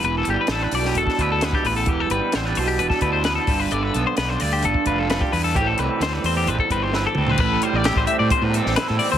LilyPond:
<<
  \new Staff \with { instrumentName = "Clean electric guitar" } { \time 4/4 \key a \minor \tempo 4 = 130 b'16 a'16 g'16 b'16 a'16 b'16 d''16 g'16 a'8 b'16 a'16 b'16 g'16 b'16 a'16 | g'16 a'16 b'8 c''16 b'16 c''16 g'16 b'16 a'16 b'16 c''16 b'16 a'8 b'16 | d''16 b'16 a'16 c''16 b'16 c''16 d''16 g'16 a'8 b'16 a'16 b'16 g'16 b'16 a'16 | g'16 a'16 b'8 c''16 b'16 c''16 g'16 b'16 a'16 b'16 c''16 b'16 a'8 b'16 |
b'8 c''16 d''16 g'16 c''16 e''16 d''16 c''16 b'16 a'8 b'16 a'16 d''16 c''16 | }
  \new Staff \with { instrumentName = "Clean electric guitar" } { \time 4/4 \key a \minor << { e'8 g8 d'4 d'8 e'8 b16 d'16 r8 | r8 g8 b16 d'8. d'8 e'8 b16 d'16 r8 | r8 b8 b16 d'8. d'8 f'8 d'8 r8 | <e g c' g'>4 g8 c'4 c'8 e'16 g'16 c'8 |
r8 g8 e'16 g'16 c'4 c'8 e'8 c'8 | } \\ { <e, e>4. b,2 e,8 | e4. b,2 g,8 | d4. g,2 g,8 | a,8 e4. e,2 |
a,2 e,2 | } >> }
  \new Staff \with { instrumentName = "Fingered electric bass" } { \clef bass \time 4/4 \key a \minor e,,8 g,,16 r16 a,,8 b,,8 e,,16 r16 d,4 a,,8 | e,,8 g,,16 r16 a,,8 b,,8 e,,16 r16 d,4 g,,8 | g,,8 b,,16 r16 b,,8 d,8 g,,16 r16 f,,4 e,8 | a,,8 c,16 r16 d,8 e,8 a,,16 r16 g,,4 d,8 |
a,,8 r16 a,,8 a,,16 r16 a,16 r16 a,8 a,,16 r16 a,16 r16 d,16 | }
  \new DrumStaff \with { instrumentName = "Drums" } \drummode { \time 4/4 hh8 hh8 <hh sn>8 hho16 sn16 hh16 <bd sn>16 <hh bd>8 <hh sn>16 bd16 hho8 | <hh bd>8 hh8 <hh sn>8 hho8 hh16 <bd sn>16 <hh bd>8 <hh sn>8 <hho bd>8 | hh8 hh8 <hh sn>8 hho8 hh16 bd16 <hh bd>8 <hh sn>16 bd16 hho8 | <hh bd>8 hh8 <hh sn>8 hho8 hh16 bd16 <hh bd>8 sn8 toml16 tomfh16 |
<cymc bd>8 hh8 <hh sn>16 bd16 hh8 <hh bd>8 hh16 sn16 <hh sn>8 hho8 | }
>>